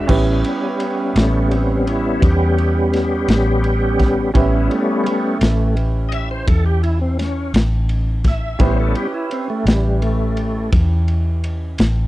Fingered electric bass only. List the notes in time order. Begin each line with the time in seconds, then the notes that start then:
0.09 A1
1.16 A1
2.22 E2
3.28 A1
4.35 A1
5.41 A1
6.47 E2
7.54 A1
8.60 A1
9.65 A1
10.72 E2
11.79 A1